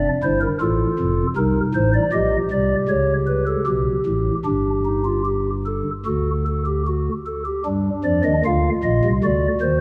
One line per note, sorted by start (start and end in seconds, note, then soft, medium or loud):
0.23 0.47 G1 medium
0.23 0.47 G2 medium
0.23 0.47 E4 medium
0.23 0.39 C5 medium
0.41 0.58 A#4 medium
0.61 0.85 A1 medium
0.61 0.85 A2 medium
0.61 1.27 F4 medium
0.61 1.27 A4 medium
0.99 1.23 F1 medium
0.99 1.23 F2 medium
1.36 1.60 C2 medium
1.36 1.60 C3 medium
1.36 2.02 D#4 medium
1.36 1.60 A#4 medium
1.75 1.98 A1 medium
1.75 1.98 A2 medium
1.75 1.91 C5 medium
1.94 2.10 D5 medium
2.12 2.37 A#1 medium
2.12 2.36 A#2 medium
2.12 3.65 G4 medium
2.12 2.37 D#5 medium
2.51 2.75 C2 medium
2.51 2.75 C3 medium
2.51 2.75 D5 medium
2.88 3.56 C#2 medium
2.88 3.56 C#3 medium
2.88 3.13 C#5 medium
3.27 3.44 B4 medium
3.47 3.64 A4 medium
3.67 3.91 B1 medium
3.67 3.91 B2 medium
3.67 4.35 G4 medium
4.06 4.31 A1 medium
4.06 4.31 A2 medium
4.45 5.83 G1 medium
4.45 5.83 G2 medium
4.45 4.70 D4 medium
4.45 5.24 G4 medium
4.86 5.03 D#4 soft
5.05 5.22 F4 medium
5.26 5.50 G4 medium
5.66 5.91 A4 medium
6.06 7.09 D2 medium
6.06 7.09 D3 medium
6.06 6.30 F#4 medium
6.06 6.44 A4 medium
6.46 6.63 A4 medium
6.66 6.83 G4 medium
6.87 7.11 F#4 medium
7.26 7.43 A4 medium
7.46 7.63 G4 medium
7.65 7.90 G2 medium
7.65 7.90 G3 medium
7.65 8.33 D4 medium
8.04 8.21 F2 medium
8.04 8.21 F3 medium
8.04 8.21 D5 medium
8.24 8.42 D#2 medium
8.24 8.42 D#3 medium
8.24 8.41 D#5 medium
8.45 8.70 D2 medium
8.45 8.69 D3 medium
8.45 9.13 F4 medium
8.45 8.69 F5 medium
8.83 9.00 A#1 medium
8.83 9.01 A#2 medium
8.83 9.08 D#5 medium
9.05 9.21 C2 medium
9.05 9.21 C3 medium
9.24 9.48 D2 medium
9.24 9.48 D3 medium
9.24 9.81 F#4 medium
9.24 9.48 D5 medium
9.61 9.81 D#2 medium
9.61 9.81 D#3 medium
9.61 9.78 C5 medium